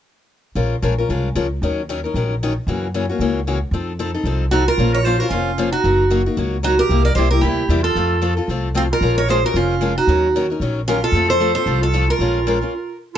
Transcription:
0.55 upright bass A#1, steel-string acoustic guitar F3 G#3 C#4 F4 A#4
0.82 upright bass A#1, steel-string acoustic guitar F3 G#3 C#4 F4 A#4
0.98 steel-string acoustic guitar C#4 F4 A#4
1.09 upright bass C2, steel-string acoustic guitar F3 G#3 C#4 F4 A#4
1.35 upright bass C#2, steel-string acoustic guitar F3 G#3 C#4 F4 A#4
1.62 upright bass D#2, steel-string acoustic guitar D#3 F#3 C#4 D#4 A#4
1.89 steel-string acoustic guitar D#3 F#3 C#4 D#4 A#4
2.04 steel-string acoustic guitar C#4 D#4 A#4
2.14 upright bass A#1, steel-string acoustic guitar D#3 F#3 C#4 D#4 A#4
2.43 steel-string acoustic guitar D#3 F#3 C#4 D#4 A#4
2.67 upright bass F#2, steel-string acoustic guitar C#3 E3 A#3 C#4 F#4
2.94 steel-string acoustic guitar C#3 E3 A#3 C#4 F#4
3.09 steel-string acoustic guitar A#3 C#4 F#4
3.19 upright bass C#2, steel-string acoustic guitar C#3 E3 A#3 C#4 F#4
3.47 steel-string acoustic guitar C#3 E3 A#3 C#4 F#4
3.71 upright bass F2, steel-string acoustic guitar F3 C4 D#4 A4
3.99 steel-string acoustic guitar F3 C4 D#4 A4
4.14 steel-string acoustic guitar C4 D#4 A4
4.24 upright bass C2, steel-string acoustic guitar F3 C4 D#4 A4
4.51 steel-string acoustic guitar F3 C4 D#4 F#4 A4, clarinet D#4
4.67 clarinet F4, steel-string acoustic guitar A#4
4.78 upright bass A#1, steel-string acoustic guitar F3 A#3 C#4 F4 C5
4.93 clarinet A#4, steel-string acoustic guitar C#5
5.03 steel-string acoustic guitar F3 A#3 C#4 C5, clarinet F4
5.07 steel-string acoustic guitar F4 C5
5.18 clarinet F#4, steel-string acoustic guitar A#4 C5
5.23 steel-string acoustic guitar C#4 F4
5.28 upright bass F1, steel-string acoustic guitar F3 A#3 F4, clarinet C#4
5.33 steel-string acoustic guitar C#4 F4 C5
5.58 steel-string acoustic guitar F3 A#3 C#4 F4 C5
5.72 clarinet D#4, steel-string acoustic guitar F#4
5.84 upright bass F#1, steel-string acoustic guitar F#3 A#3 D#4 F#4
6.10 steel-string acoustic guitar F#3 A#3 D#4 F#4
6.26 steel-string acoustic guitar A#3 D#4 F#4
6.37 upright bass C#2, steel-string acoustic guitar F#3 A#3 D#4 F#4
6.63 steel-string acoustic guitar F#3 A#3 D#4 F#4, clarinet D#4
6.79 clarinet G4, steel-string acoustic guitar A#4
6.89 upright bass C2, steel-string acoustic guitar C3 G3 A#3 E4 G4
7.05 clarinet A#4, steel-string acoustic guitar D5
7.15 upright bass C2, steel-string acoustic guitar C3 G3 A#3 E4 G4 C5, clarinet G4
7.30 steel-string acoustic guitar E4 G4 A#4, clarinet G4
7.35 steel-string acoustic guitar A#3
7.41 upright bass D2, steel-string acoustic guitar C3 G3 A#3 E4 G4, clarinet E4
7.69 upright bass E2, steel-string acoustic guitar C3 G3 A#3 E4 G4
7.83 clarinet F4, steel-string acoustic guitar A4
7.95 upright bass F2, steel-string acoustic guitar F3 A3 C4 F4 A4
8.22 steel-string acoustic guitar F3 A3 C4 F4 A4
8.37 steel-string acoustic guitar C4 F4 A4
8.48 upright bass C2, steel-string acoustic guitar F3 A3 C4 F4 A4
8.74 steel-string acoustic guitar F3 A3 C4 F4 A4, clarinet C4
8.92 clarinet F4, steel-string acoustic guitar A#4
9.01 upright bass A#1, steel-string acoustic guitar F3 G#3 C#4 F4 A#4
9.18 clarinet A#4, steel-string acoustic guitar C#5
9.29 steel-string acoustic guitar F3 G#3 C#4 F4 A#4 C5, clarinet G#4
9.44 steel-string acoustic guitar C#4 F4 A#4, clarinet F#4
9.54 upright bass F1, steel-string acoustic guitar F3 G#3 C#4 F4 A#4, clarinet C#4
9.81 steel-string acoustic guitar F3 G#3 C#4 F4 A#4
9.98 clarinet D#4, steel-string acoustic guitar F#4
10.07 upright bass D#2, steel-string acoustic guitar D#3 F#3 C#4 D#4 A#4
10.36 steel-string acoustic guitar D#3 F#3 C#4 D#4 A#4
10.50 steel-string acoustic guitar C#4 D#4 A#4
10.60 upright bass A#1, steel-string acoustic guitar D#3 F#3 C#4 D#4 A#4
10.88 steel-string acoustic guitar D#3 F#3 C#4 D#4 F4 A#4, clarinet C#4
11.03 clarinet F4, steel-string acoustic guitar A4
11.12 upright bass F2, steel-string acoustic guitar F3 A3 C4 F4 A4
11.29 clarinet A4, steel-string acoustic guitar C5
11.40 steel-string acoustic guitar F3 A3 C4 F4 A4
11.54 steel-string acoustic guitar C4 F4 A4 C5, clarinet A4
11.66 upright bass C2, steel-string acoustic guitar F3 A3 C4 F4 A4
11.81 clarinet F4, steel-string acoustic guitar A4
11.93 steel-string acoustic guitar F3 A3 C4 F4 A4
12.08 clarinet F4, steel-string acoustic guitar A#4
12.19 upright bass A#1, steel-string acoustic guitar F3 G#3 C#4 F4 A#4
12.47 steel-string acoustic guitar F3 G#3 C#4 F4 A#4
12.62 steel-string acoustic guitar C#4 F4
13.14 clarinet F4

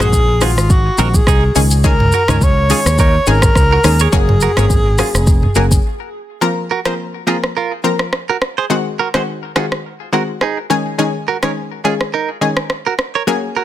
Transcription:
Already playing: alto saxophone G#4
0.00 fingered electric bass A#1, synth pluck D#3 G#3 C4 F#4, clean electric guitar G#4 C5, cross-stick, mid tom, shaker
0.13 kick, shaker
0.41 synth pluck D#3 G#3 C4 F#4, alto saxophone F4, clean electric guitar F4 G#4, cross-stick, open hi-hat, shaker
0.57 fingered electric bass G#1, cross-stick, shaker
0.70 alto saxophone F#4, kick, shaker
0.98 fingered electric bass A#1, synth pluck D#3 G#3 C4 F#4, clean electric guitar F#4 A#4, shaker
1.14 alto saxophone G#4, kick, shaker
1.27 fingered electric bass C2, clean electric guitar D#4 G#4, kick, cross-stick, shaker
1.55 fingered electric bass C#2, synth pluck D#3 G#3 C#4 G#4, open hi-hat, shaker
1.71 shaker
1.84 synth pluck D#3 G#3 C#4 G#4, alto saxophone A#4, kick, shaker
2.00 mid tom
2.12 clean electric guitar F#4 A#4, shaker
2.28 fingered electric bass C#2, synth pluck D#3 G#3 C#4 G#4, clean electric guitar A#4 C#5, cross-stick, mid tom, shaker
2.41 alto saxophone C#5, kick, shaker
2.70 synth pluck D#3 G#3 C#4 G#4, clean electric guitar F4 G#4, open hi-hat, shaker
2.86 fingered electric bass D#2, cross-stick, shaker
2.98 clean electric guitar D#4 A#4, alto saxophone C#5, kick, shaker
3.27 fingered electric bass G#1, synth pluck D#3 G#3 C#4 G#4, alto saxophone A#4, shaker
3.42 kick, cross-stick, shaker
3.55 fingered electric bass C#2, kick, cross-stick, shaker
3.72 clean electric guitar F#4 A#4
3.84 fingered electric bass D#2, synth pluck D#3 G#3 C#4 G#4, cross-stick, open hi-hat, shaker
3.99 alto saxophone G#4, clean electric guitar A#4 C#5, shaker
4.12 fingered electric bass F#1, synth pluck F#3 A#3 C#4 G#4, kick, shaker
4.29 mid tom
4.41 clean electric guitar F#4 A#4, shaker
4.57 fingered electric bass G#1, synth pluck F#3 A#3 C#4 G#4, clean electric guitar A#4 C#5, cross-stick, mid tom, shaker
4.70 kick, shaker
4.99 synth pluck F#3 A#3 C#4 G#4, clean electric guitar F4 G#4, cross-stick, open hi-hat, shaker
5.14 fingered electric bass F1, cross-stick, shaker
5.27 kick, shaker
5.43 mid tom
5.55 fingered electric bass F#1, synth pluck F#3 A#3 C#4 G#4, clean electric guitar F#4 A#4, shaker
5.71 kick, shaker
6.41 synth pluck F3 A#3 C4 A#4
6.71 clean electric guitar F#4 A#4
6.85 synth pluck F3 A#3 C4 A#4, clean electric guitar G#4 C5, cross-stick
7.27 synth pluck F3 A#3 C4 A#4, clean electric guitar F4 G#4
7.44 cross-stick
7.57 clean electric guitar F4 A#4
7.84 synth pluck F3 A#3 C4 A#4
7.99 cross-stick
8.13 cross-stick
8.29 clean electric guitar F#4 A#4
8.42 cross-stick
8.58 clean electric guitar G#4 C5
8.70 synth pluck D#3 G#3 C4 F#4
8.99 clean electric guitar F#4 A#4
9.14 synth pluck D#3 G#3 C4 F#4, clean electric guitar G#4 C5, cross-stick
9.56 synth pluck D#3 G#3 C4 F#4, clean electric guitar F4 G#4, cross-stick
9.72 cross-stick
10.13 synth pluck D#3 G#3 C4 F#4, clean electric guitar F#4 A#4
10.41 clean electric guitar D#4 G#4, cross-stick
10.70 synth pluck D#3 G#3 C#4 G#4
10.98 synth pluck D#3 G#3 C#4 G#4
11.28 clean electric guitar F#4 A#4
11.43 synth pluck D#3 G#3 C#4 G#4, clean electric guitar A#4 C#5, cross-stick
11.84 synth pluck D#3 G#3 C#4 G#4, clean electric guitar F4 G#4
12.01 cross-stick
12.14 clean electric guitar D#4 A#4
12.41 synth pluck D#3 G#3 C#4 G#4
12.57 cross-stick
12.70 cross-stick
12.86 clean electric guitar F#4 A#4
12.99 cross-stick
13.15 clean electric guitar A#4 C#5
13.27 synth pluck F#3 A#3 C#4 G#4
13.56 clean electric guitar F#4 A#4

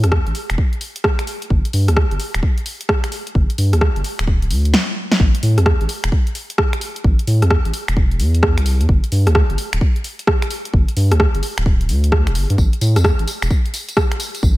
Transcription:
0.04 sub bass E2, cross-stick, closed hi-hat
0.12 kick, cross-stick
0.27 sub bass A1, closed hi-hat
0.35 open hi-hat
0.50 sub bass E1, finger snap, closed hi-hat
0.58 kick
0.73 closed hi-hat
0.81 open hi-hat
0.96 closed hi-hat
1.04 kick, cross-stick
1.19 finger snap, closed hi-hat
1.27 open hi-hat
1.42 closed hi-hat
1.50 sub bass G1, kick
1.65 closed hi-hat
1.73 sub bass G2, open hi-hat
1.88 sub bass D2, cross-stick, closed hi-hat
1.97 kick, cross-stick
2.11 sub bass G1, closed hi-hat
2.20 open hi-hat
2.34 sub bass D1, finger snap, closed hi-hat
2.43 kick
2.58 closed hi-hat
2.66 open hi-hat
2.81 closed hi-hat
2.89 kick, cross-stick
3.04 finger snap, closed hi-hat
3.12 open hi-hat
3.27 closed hi-hat
3.35 sub bass G1, kick
3.50 closed hi-hat
3.58 sub bass G2, open hi-hat
3.73 sub bass D2, cross-stick, closed hi-hat
3.81 kick, cross-stick
3.96 sub bass G1, closed hi-hat
4.04 open hi-hat
4.19 sub bass D1, finger snap, closed hi-hat
4.27 kick
4.42 closed hi-hat
4.50 sub bass D2, open hi-hat
4.65 closed hi-hat
4.74 snare
5.12 snare
5.20 sub bass A1, kick
5.35 closed hi-hat
5.43 sub bass A2, open hi-hat
5.58 sub bass E2, cross-stick, closed hi-hat
5.66 kick, cross-stick
5.81 sub bass A1, closed hi-hat
5.89 open hi-hat
6.04 sub bass E1, finger snap, closed hi-hat
6.12 kick
6.27 closed hi-hat
6.35 open hi-hat
6.50 closed hi-hat
6.58 kick, cross-stick
6.73 finger snap, closed hi-hat
6.81 open hi-hat
6.96 closed hi-hat
7.04 sub bass A1, kick
7.19 closed hi-hat
7.27 sub bass A2, open hi-hat
7.42 sub bass E2, cross-stick, closed hi-hat
7.50 kick, cross-stick
7.65 sub bass A1, closed hi-hat
7.74 open hi-hat
7.88 sub bass E1, finger snap, closed hi-hat
7.97 kick
8.11 closed hi-hat
8.20 sub bass E2, open hi-hat
8.35 closed hi-hat
8.43 kick, cross-stick
8.58 sub bass C2, finger snap, closed hi-hat
8.66 open hi-hat
8.81 sub bass E2, closed hi-hat
8.89 sub bass G1, kick
9.04 closed hi-hat
9.12 sub bass G2, open hi-hat
9.27 sub bass D2, cross-stick, closed hi-hat
9.35 kick, cross-stick
9.50 sub bass G1, closed hi-hat
9.58 open hi-hat
9.73 sub bass D1, finger snap, closed hi-hat
9.81 kick
9.96 closed hi-hat
10.04 open hi-hat
10.19 closed hi-hat
10.27 kick, cross-stick
10.42 finger snap, closed hi-hat
10.51 open hi-hat
10.65 closed hi-hat
10.73 sub bass G1, kick
10.88 closed hi-hat
10.96 sub bass G2, open hi-hat
11.11 sub bass D2, cross-stick, closed hi-hat
11.20 kick, cross-stick
11.34 sub bass G1, closed hi-hat
11.43 open hi-hat
11.58 sub bass D1, finger snap, closed hi-hat
11.66 kick
11.81 closed hi-hat
11.89 sub bass D2, open hi-hat
12.04 closed hi-hat
12.12 kick, cross-stick
12.27 sub bass D1, finger snap, closed hi-hat
12.35 sub bass G1, open hi-hat
12.50 sub bass G2, closed hi-hat
12.58 sub bass A1, kick, tambourine
12.73 closed hi-hat
12.81 sub bass A2, open hi-hat, tambourine
12.96 sub bass E2, cross-stick, closed hi-hat, tambourine
13.04 kick, cross-stick, tambourine
13.19 sub bass A1, closed hi-hat
13.28 open hi-hat, tambourine
13.42 sub bass E1, finger snap, closed hi-hat, tambourine
13.51 kick, tambourine
13.66 closed hi-hat
13.74 open hi-hat, tambourine
13.89 closed hi-hat, tambourine
13.97 kick, cross-stick, tambourine
14.12 finger snap, closed hi-hat
14.20 open hi-hat, tambourine
14.35 closed hi-hat, tambourine
14.43 sub bass A1, kick, tambourine

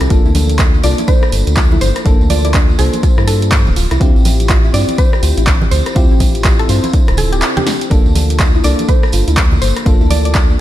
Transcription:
Already playing: synth pluck G4
0.01 analog synth bass C2, cross-stick, closed hi-hat, tambourine
0.09 analog synth bass G1, fm electric piano A#3 D4 F4 A4, synth arpeggio sound F4, kick, closed hi-hat, tambourine
0.25 analog synth bass D2, synth arpeggio sound E4, tambourine
0.35 synth arpeggio sound D4, open hi-hat, tambourine, high conga
0.50 closed hi-hat, tambourine
0.59 kick, clap, closed hi-hat, tambourine
0.74 tambourine
0.83 analog synth bass C2, fm electric piano A#3 D4 F4 A4, synth arpeggio sound F4, synth pluck D5, open hi-hat, tambourine
0.98 synth arpeggio sound E4, closed hi-hat, tambourine, high conga
1.07 synth arpeggio sound D4, synth pluck C5, kick, closed hi-hat, tambourine
1.22 cross-stick, tambourine
1.32 analog synth bass G1, open hi-hat, tambourine
1.47 analog synth bass D2, closed hi-hat, tambourine
1.57 synth arpeggio sound F4, kick, clap, closed hi-hat, tambourine
1.71 synth arpeggio sound E4, tambourine, high conga, low conga
1.81 analog synth bass G1, synth arpeggio sound D4, synth pluck C5, open hi-hat, tambourine
1.96 cross-stick, closed hi-hat, tambourine
2.05 analog synth bass G1, fm electric piano A#3 D4 F4 A4, kick, closed hi-hat, tambourine
2.20 analog synth bass D2, tambourine
2.30 synth arpeggio sound F4, synth pluck D5, open hi-hat, tambourine, high conga
2.45 synth arpeggio sound E4, synth pluck D5, closed hi-hat, tambourine
2.54 synth arpeggio sound D4, kick, clap, closed hi-hat, tambourine
2.69 tambourine
2.78 analog synth bass C2, fm electric piano A#3 D4 F4 C5, synth pluck A4, open hi-hat, tambourine
2.93 closed hi-hat, tambourine, high conga
3.03 synth arpeggio sound F4, kick, closed hi-hat, tambourine
3.18 analog synth bass G2, synth arpeggio sound E4, cross-stick, tambourine
3.27 synth arpeggio sound D4, synth pluck A4, open hi-hat, tambourine
3.42 closed hi-hat, tambourine
3.52 kick, clap, closed hi-hat, tambourine
3.66 analog synth bass D1, tambourine, high conga, low conga
3.76 analog synth bass D1, synth arpeggio sound F4, open hi-hat, tambourine
3.91 analog synth bass C2, synth arpeggio sound E4, cross-stick, closed hi-hat, tambourine
4.00 analog synth bass D2, fm electric piano C4 E4 F4 G4, synth arpeggio sound D4, kick, closed hi-hat, tambourine
4.15 analog synth bass A1, tambourine
4.25 open hi-hat, tambourine, high conga
4.40 closed hi-hat, tambourine
4.49 synth arpeggio sound F4, kick, clap, closed hi-hat
4.64 synth arpeggio sound E4, tambourine
4.73 analog synth bass G2, fm electric piano C4 E4 F4 G4, synth arpeggio sound D4, synth pluck D5, open hi-hat, tambourine
4.89 closed hi-hat, tambourine, high conga
4.98 synth pluck C5, kick, closed hi-hat, tambourine
5.13 cross-stick, tambourine
5.23 analog synth bass D2, synth arpeggio sound F4, open hi-hat, tambourine
5.37 analog synth bass A1, synth arpeggio sound E4, closed hi-hat, tambourine
5.47 synth arpeggio sound D4, kick, clap, closed hi-hat, tambourine
5.61 tambourine, high conga, low conga
5.71 analog synth bass D2, synth pluck C5, open hi-hat, tambourine
5.86 cross-stick, closed hi-hat, tambourine
5.95 analog synth bass D2, fm electric piano C4 E4 F4 G4, synth arpeggio sound F4, kick, closed hi-hat, tambourine
6.11 analog synth bass A1, synth arpeggio sound E4, tambourine
6.20 synth arpeggio sound D4, kick, open hi-hat, tambourine, high conga
6.35 closed hi-hat, tambourine
6.44 kick, clap, closed hi-hat, tambourine
6.59 synth pluck A4, closed hi-hat, tambourine
6.68 analog synth bass G2, fm electric piano C4 E4 F4 C5, synth arpeggio sound F4, open hi-hat, tambourine
6.84 synth arpeggio sound E4, closed hi-hat, tambourine, high conga
6.93 synth arpeggio sound D4, kick, closed hi-hat, tambourine
7.08 analog synth bass D1, cross-stick, closed hi-hat, tambourine
7.17 synth pluck A4, synth arpeggio sound A4, open hi-hat, tambourine, low conga
7.32 synth pluck G4, closed hi-hat, tambourine
7.42 synth arpeggio sound D5, clap, closed hi-hat, tambourine
7.57 synth arpeggio sound D4, synth pluck G4, closed hi-hat, tambourine, high conga, low conga
7.67 synth arpeggio sound D4, snare, open hi-hat, tambourine
7.81 closed hi-hat, tambourine
7.90 analog synth bass G1, fm electric piano A#3 D4 F4 A4, synth arpeggio sound D4, kick, closed hi-hat, tambourine
8.06 analog synth bass D2, tambourine
8.15 open hi-hat, tambourine, high conga
8.30 closed hi-hat, tambourine
8.40 synth arpeggio sound F4, kick, clap, closed hi-hat, tambourine
8.55 synth arpeggio sound E4, tambourine
8.63 analog synth bass C2, fm electric piano A#3 D4 F4 A4, synth arpeggio sound D4, synth pluck D5, open hi-hat, tambourine
8.79 closed hi-hat, tambourine, high conga
8.89 synth pluck C5, kick, closed hi-hat, tambourine
9.03 cross-stick, tambourine
9.12 analog synth bass G1, synth arpeggio sound F4, open hi-hat, tambourine
9.28 analog synth bass D2, synth arpeggio sound E4, closed hi-hat, tambourine
9.37 synth arpeggio sound D4, kick, clap, closed hi-hat, tambourine
9.52 tambourine, high conga, low conga
9.62 analog synth bass G1, synth pluck C5, open hi-hat, tambourine
9.77 cross-stick, closed hi-hat, tambourine
9.85 analog synth bass G1, fm electric piano A#3 D4 F4 A4, synth arpeggio sound F4, kick, closed hi-hat, tambourine
10.01 analog synth bass D2, synth arpeggio sound E4, tambourine
10.10 synth arpeggio sound D4, synth pluck D5, open hi-hat, tambourine, high conga
10.25 synth pluck D5, closed hi-hat, tambourine
10.35 kick, clap, closed hi-hat, tambourine
10.50 tambourine

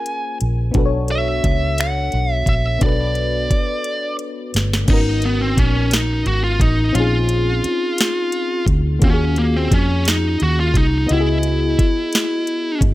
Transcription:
Already playing: fm electric piano A#3 C#4 F4 G#4 A#4, lead electric guitar G#5
0.06 closed hi-hat
0.41 fingered electric bass A#1, closed hi-hat
0.71 fingered electric bass B1, fm electric piano B3 D4 F#4, kick, closed hi-hat
0.77 fm electric piano A4 B4
0.85 fm electric piano C#5
1.08 lead electric guitar E5, closed hi-hat
1.44 fingered electric bass C#2, kick, closed hi-hat
1.78 lead electric guitar F#5, finger snap, closed hi-hat
2.12 fingered electric bass B1, closed hi-hat
2.32 lead electric guitar E5
2.46 fingered electric bass A#1, lead electric guitar E5, kick, closed hi-hat
2.79 fingered electric bass B1, fm electric piano B3 D4 F#4, kick, closed hi-hat
2.83 fm electric piano A4 B4, lead electric guitar D5
3.15 closed hi-hat
3.51 muted fingered electric bass stroke, kick, closed hi-hat
3.84 closed hi-hat
4.19 closed hi-hat
4.54 fingered electric bass G1, snare, closed hi-hat
4.73 snare
4.86 fingered electric bass G#1, fm electric piano A#3 C#4 D#4, kick, closed hi-hat, crash
4.90 fm electric piano B3 F#4 A#4, lead electric guitar D#4
5.22 lead electric guitar B3, closed hi-hat
5.42 lead electric guitar C4
5.57 fingered electric bass A#1, lead electric guitar C#4, kick, closed hi-hat
5.91 lead electric guitar D#4, snare, closed hi-hat
6.26 fingered electric bass G#1, lead electric guitar F#4, closed hi-hat
6.44 lead electric guitar F4
6.60 fingered electric bass A1, lead electric guitar D#4, kick, closed hi-hat
6.93 fingered electric bass A#1, fm electric piano C4 C#4 D#4, lead electric guitar F4, closed hi-hat
6.98 fm electric piano F4 G#4
7.29 closed hi-hat
7.64 muted fingered electric bass stroke, closed hi-hat
7.98 snare, closed hi-hat
8.32 closed hi-hat
8.66 fingered electric bass D2, kick, closed hi-hat
8.99 fingered electric bass D#2, fm electric piano A#3 C#4 F4, kick, closed hi-hat
9.04 lead electric guitar C#4, fm electric piano F#4 G4
9.13 fm electric piano G#4
9.36 lead electric guitar A#3, closed hi-hat
9.56 lead electric guitar C4
9.71 fingered electric bass F2, lead electric guitar C#4, kick, closed hi-hat
10.05 lead electric guitar D#4, snare, closed hi-hat
10.40 fingered electric bass D#2, lead electric guitar F#4, closed hi-hat
10.60 lead electric guitar F4
10.74 fingered electric bass C2, lead electric guitar D#4, kick, closed hi-hat
11.07 fm electric piano B3 E4 D#5, closed hi-hat
11.11 fingered electric bass C#2, lead electric guitar E4, fm electric piano F#4 G4
11.20 fm electric piano G#4
11.43 closed hi-hat
11.79 kick, closed hi-hat
12.13 snare, closed hi-hat
12.47 closed hi-hat
12.81 fingered electric bass G1, kick, closed hi-hat

